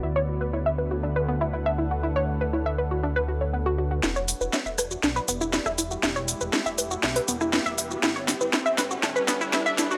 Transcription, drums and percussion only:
4.03 snare soft
4.03 shaker soft
4.16 shaker soft
4.28 open hi-hat medium
4.28 shaker medium
4.41 shaker soft
4.53 snare soft
4.53 shaker soft
4.66 shaker soft
4.78 cross-stick soft
4.78 open hi-hat loud
4.78 shaker medium
4.91 shaker soft
5.03 snare soft
5.03 shaker soft
5.16 shaker soft
5.28 open hi-hat loud
5.28 shaker medium
5.41 shaker soft
5.53 snare medium
5.53 shaker soft
5.66 cross-stick soft
5.66 shaker soft
5.78 open hi-hat loud
5.78 shaker medium
5.91 shaker soft
6.03 snare medium
6.03 shaker soft
6.16 shaker soft
6.28 open hi-hat medium
6.28 shaker medium
6.41 shaker soft
6.53 cross-stick soft
6.53 snare medium
6.53 shaker soft
6.66 shaker soft
6.78 open hi-hat loud
6.78 shaker medium
6.91 shaker soft
7.03 snare medium
7.03 shaker soft
7.16 open hi-hat medium
7.16 shaker soft
7.28 open hi-hat loud
7.28 shaker medium
7.41 cross-stick soft
7.41 shaker soft
7.53 snare medium
7.53 shaker soft
7.66 shaker soft
7.78 open hi-hat loud
7.78 shaker medium
7.91 shaker soft
8.03 snare medium
8.03 shaker soft
8.16 shaker soft
8.28 snare medium
8.28 open hi-hat loud
8.28 shaker medium
8.41 shaker soft
8.53 snare medium
8.53 shaker soft
8.66 shaker soft
8.78 snare medium
8.78 open hi-hat loud
8.78 shaker medium
8.91 shaker soft
9.03 snare medium
9.03 shaker soft
9.16 shaker soft
9.28 snare medium
9.28 open hi-hat loud
9.28 shaker medium
9.41 shaker soft
9.53 snare medium
9.53 shaker soft
9.66 shaker soft
9.78 snare medium
9.78 open hi-hat loud
9.78 shaker medium
9.91 shaker soft

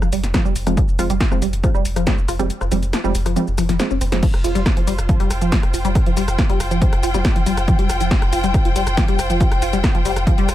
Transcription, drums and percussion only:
0.02 cross-stick medium
0.02 shaker soft
0.12 open hi-hat loud
0.12 shaker medium
0.24 snare soft
0.24 closed hi-hat medium
0.24 shaker soft
0.34 kick loud
0.34 cross-stick medium
0.34 snare loud
0.34 closed hi-hat medium
0.34 shaker soft
0.45 shaker soft
0.56 open hi-hat loud
0.56 shaker medium
0.67 cross-stick medium
0.67 closed hi-hat medium
0.67 shaker soft
0.77 kick loud
0.77 closed hi-hat medium
0.77 shaker soft
0.88 shaker soft
0.99 cross-stick medium
0.99 open hi-hat loud
0.99 shaker medium
1.10 closed hi-hat medium
1.10 shaker soft
1.20 kick loud
1.20 snare loud
1.20 closed hi-hat medium
1.20 shaker soft
1.32 cross-stick medium
1.32 shaker soft
1.42 open hi-hat loud
1.42 shaker medium
1.53 closed hi-hat medium
1.53 shaker soft
1.64 kick loud
1.64 cross-stick medium
1.64 closed hi-hat medium
1.64 shaker soft
1.75 shaker soft
1.85 open hi-hat loud
1.85 shaker medium
1.96 cross-stick medium
1.96 closed hi-hat medium
1.96 shaker soft
2.07 kick loud
2.07 snare loud
2.07 closed hi-hat medium
2.07 shaker soft
2.18 shaker soft
2.28 cross-stick medium
2.28 open hi-hat loud
2.28 shaker medium
2.40 closed hi-hat medium
2.40 shaker soft
2.50 closed hi-hat medium
2.50 shaker soft
2.61 cross-stick medium
2.61 shaker soft
2.72 open hi-hat loud
2.72 shaker medium
2.83 closed hi-hat medium
2.83 shaker soft
2.93 cross-stick medium
2.93 snare loud
2.93 closed hi-hat medium
2.93 shaker soft
3.04 shaker soft
3.15 open hi-hat loud
3.15 shaker medium
3.26 cross-stick medium
3.26 closed hi-hat medium
3.26 shaker soft
3.36 closed hi-hat medium
3.36 shaker soft
3.47 shaker soft
3.58 cross-stick medium
3.58 open hi-hat loud
3.58 shaker medium
3.69 snare soft
3.69 closed hi-hat medium
3.69 shaker soft
3.80 snare loud
3.80 closed hi-hat medium
3.80 shaker soft
3.91 shaker soft
4.01 open hi-hat loud
4.01 shaker medium
4.12 snare medium
4.12 closed hi-hat medium
4.12 shaker soft
4.23 kick loud
4.23 closed hi-hat medium
4.23 crash loud
4.23 shaker soft
4.34 cross-stick medium
4.34 closed hi-hat medium
4.44 open hi-hat loud
4.44 shaker medium
4.55 closed hi-hat medium
4.55 shaker soft
4.66 kick loud
4.66 cross-stick medium
4.66 snare loud
4.66 closed hi-hat soft
4.66 shaker soft
4.77 closed hi-hat medium
4.87 open hi-hat loud
4.87 shaker medium
4.98 cross-stick medium
4.98 closed hi-hat medium
4.98 shaker soft
5.09 kick loud
5.09 closed hi-hat medium
5.09 shaker soft
5.20 closed hi-hat medium
5.31 cross-stick medium
5.31 open hi-hat loud
5.31 shaker medium
5.42 closed hi-hat medium
5.42 shaker soft
5.52 kick loud
5.52 snare loud
5.52 closed hi-hat medium
5.52 shaker soft
5.63 cross-stick medium
5.63 closed hi-hat medium
5.74 open hi-hat loud
5.74 shaker medium
5.85 closed hi-hat medium
5.85 shaker soft
5.95 kick loud
5.95 cross-stick medium
5.95 closed hi-hat medium
5.95 shaker soft
6.06 closed hi-hat medium
6.17 open hi-hat loud
6.17 shaker medium
6.28 cross-stick medium
6.28 closed hi-hat medium
6.28 shaker soft
6.38 kick loud
6.38 snare loud
6.38 closed hi-hat soft
6.38 shaker soft
6.50 closed hi-hat medium
6.60 cross-stick medium
6.60 open hi-hat loud
6.60 shaker medium
6.71 closed hi-hat medium
6.71 shaker soft
6.82 kick loud
6.82 closed hi-hat medium
6.82 shaker soft
6.93 cross-stick medium
6.93 closed hi-hat medium
7.03 open hi-hat loud
7.03 shaker medium
7.14 snare soft
7.14 closed hi-hat medium
7.14 shaker soft
7.25 kick loud
7.25 cross-stick medium
7.25 snare loud
7.25 closed hi-hat medium
7.25 shaker soft
7.36 closed hi-hat medium
7.46 open hi-hat loud
7.46 shaker medium
7.57 cross-stick medium
7.57 closed hi-hat medium
7.57 shaker soft
7.68 kick loud
7.68 closed hi-hat medium
7.68 shaker soft
7.79 closed hi-hat medium
7.89 cross-stick medium
7.89 open hi-hat loud
7.89 shaker medium
8.00 closed hi-hat medium
8.00 shaker soft
8.11 kick loud
8.11 snare loud
8.11 closed hi-hat soft
8.11 shaker soft
8.22 cross-stick medium
8.22 closed hi-hat medium
8.33 open hi-hat loud
8.33 shaker medium
8.44 closed hi-hat medium
8.44 shaker soft
8.54 kick loud
8.54 cross-stick medium
8.54 closed hi-hat medium
8.54 shaker soft
8.65 closed hi-hat medium
8.76 open hi-hat loud
8.76 shaker medium
8.87 cross-stick medium
8.87 closed hi-hat medium
8.87 shaker soft
8.97 kick loud
8.97 snare loud
8.97 closed hi-hat medium
8.97 shaker soft
9.08 closed hi-hat medium
9.19 cross-stick medium
9.19 open hi-hat loud
9.19 shaker medium
9.30 closed hi-hat medium
9.30 shaker soft
9.40 kick loud
9.40 closed hi-hat medium
9.40 shaker soft
9.52 cross-stick medium
9.52 closed hi-hat medium
9.62 open hi-hat loud
9.62 shaker medium
9.73 closed hi-hat medium
9.73 shaker soft
9.84 kick loud
9.84 cross-stick medium
9.84 snare loud
9.84 closed hi-hat soft
9.84 shaker soft
9.95 closed hi-hat medium
10.05 open hi-hat loud
10.05 shaker medium
10.16 cross-stick medium
10.16 closed hi-hat medium
10.16 shaker soft
10.27 kick loud
10.27 closed hi-hat medium
10.27 shaker soft
10.38 closed hi-hat medium
10.49 cross-stick medium
10.49 open hi-hat loud
10.49 shaker medium

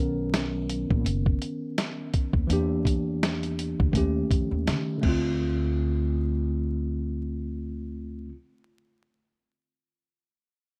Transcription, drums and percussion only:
0.34 snare loud
0.34 closed hi-hat medium
0.70 closed hi-hat medium
0.91 kick loud
1.06 closed hi-hat medium
1.26 kick medium
1.42 closed hi-hat medium
1.78 snare loud
1.78 closed hi-hat loud
2.14 kick medium
2.14 closed hi-hat medium
2.33 kick medium
2.50 closed hi-hat medium
2.85 kick medium
2.85 closed hi-hat medium
3.23 snare loud
3.23 closed hi-hat medium
3.43 closed hi-hat soft
3.59 closed hi-hat medium
3.80 kick medium
3.93 kick medium
3.93 closed hi-hat medium
4.31 kick medium
4.31 closed hi-hat medium
4.67 snare loud
4.67 closed hi-hat medium
5.03 kick medium
5.03 crash medium

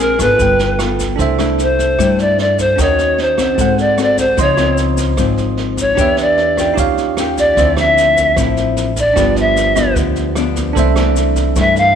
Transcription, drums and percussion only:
0.00 shaker soft
0.19 kick soft
0.19 cross-stick medium
0.19 snare soft
0.19 shaker medium
0.39 kick medium
0.39 snare soft
0.39 shaker medium
0.59 snare soft
0.59 shaker soft
0.79 cross-stick medium
0.79 snare soft
0.79 shaker soft
0.99 kick soft
0.99 snare soft
0.99 shaker medium
1.18 kick medium
1.18 snare soft
1.18 shaker medium
1.39 cross-stick medium
1.39 snare soft
1.39 shaker soft
1.58 snare soft
1.58 shaker soft
1.79 kick soft
1.79 snare soft
1.79 shaker medium
1.99 kick medium
1.99 cross-stick medium
1.99 snare soft
1.99 shaker medium
2.19 snare soft
2.19 shaker soft
2.38 snare soft
2.58 kick soft
2.58 snare soft
2.58 shaker medium
2.78 kick medium
2.78 cross-stick soft
2.78 snare soft
2.78 shaker medium
2.98 snare soft
2.98 shaker soft
3.18 snare soft
3.38 kick soft
3.38 cross-stick soft
3.38 snare soft
3.38 shaker medium
3.58 kick medium
3.58 snare soft
3.58 shaker medium
3.78 snare soft
3.78 shaker soft
3.98 cross-stick medium
3.98 snare soft
3.98 shaker soft
4.17 kick soft
4.17 snare soft
4.17 shaker medium
4.37 kick medium
4.37 snare soft
4.37 shaker medium
4.57 cross-stick medium
4.57 snare soft
4.57 shaker soft
4.78 snare soft
4.78 shaker medium
4.97 kick soft
4.97 snare soft
4.97 shaker medium
5.17 kick medium
5.17 cross-stick medium
5.17 snare soft
5.17 shaker medium
5.37 snare soft
5.37 shaker soft
5.57 snare soft
5.77 kick soft
5.77 snare soft
5.77 shaker medium
5.97 kick medium
5.97 cross-stick medium
5.97 snare soft
5.97 shaker medium
6.17 snare soft
6.17 shaker soft
6.37 snare soft
6.57 kick soft
6.57 cross-stick medium
6.57 snare soft
6.57 shaker medium
6.77 kick medium
6.77 snare soft
6.77 shaker medium
6.97 snare soft
6.97 shaker soft
7.17 cross-stick medium
7.17 snare soft
7.17 shaker soft
7.37 kick soft
7.37 snare soft
7.37 shaker medium
7.57 kick medium
7.57 snare soft
7.57 shaker medium
7.77 cross-stick medium
7.77 snare soft
7.77 shaker soft
7.97 snare soft
7.97 shaker soft
8.17 kick soft
8.17 snare soft
8.17 shaker medium
8.37 kick medium
8.37 cross-stick medium
8.37 snare soft
8.37 shaker medium
8.57 snare soft
8.57 shaker soft
8.77 snare soft
8.77 shaker soft
8.96 kick soft
8.96 snare soft
8.96 shaker medium
9.16 kick medium
9.16 cross-stick medium
9.16 snare soft
9.16 shaker medium
9.36 snare soft
9.36 shaker soft
9.56 snare soft
9.56 shaker soft
9.76 kick soft
9.76 cross-stick medium
9.76 snare soft
9.76 shaker medium
9.95 kick medium
9.95 snare soft
9.95 shaker medium
10.16 snare soft
10.16 shaker soft
10.35 cross-stick medium
10.35 snare soft
10.35 shaker medium
10.56 kick soft
10.56 snare soft
10.56 shaker medium
10.76 kick medium
10.76 snare soft
10.76 shaker medium
10.96 cross-stick medium
10.96 snare soft
10.96 shaker soft
11.16 snare soft
11.16 shaker medium
11.36 kick soft
11.36 snare soft
11.36 shaker medium
11.56 kick medium
11.56 cross-stick medium
11.56 snare soft
11.56 shaker medium
11.76 snare soft
11.76 shaker soft

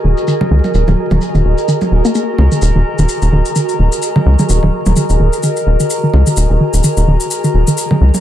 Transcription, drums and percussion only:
0.17 shaker soft
0.28 shaker soft
0.41 mid tom medium
0.41 high tom medium
0.64 high tom soft
0.64 shaker soft
0.74 shaker soft
0.88 high tom soft
0.88 shaker soft
1.11 high tom medium
1.11 shaker soft
1.21 shaker soft
1.35 shaker soft
1.58 shaker soft
1.68 shaker soft
1.81 high tom soft
1.81 shaker soft
2.05 shaker soft
2.15 shaker soft
2.38 mid tom medium
2.52 shaker soft
2.62 shaker soft
2.99 shaker soft
3.09 shaker soft
3.22 shaker soft
3.45 shaker soft
3.56 shaker soft
3.69 shaker soft
3.92 shaker soft
4.02 shaker soft
4.16 mid tom medium
4.16 high tom medium
4.39 high tom soft
4.39 shaker soft
4.49 shaker soft
4.63 high tom soft
4.86 high tom medium
4.86 shaker soft
4.96 shaker soft
5.10 shaker soft
5.33 shaker soft
5.43 shaker soft
5.56 shaker soft
5.80 shaker soft
5.90 shaker soft
6.14 mid tom medium
6.27 shaker soft
6.37 shaker soft
6.74 shaker soft
6.84 shaker soft
6.97 shaker soft
7.20 shaker soft
7.31 shaker soft
7.44 shaker soft
7.67 shaker soft
7.78 shaker medium
7.91 mid tom medium
7.91 high tom medium
8.14 high tom soft
8.14 shaker soft

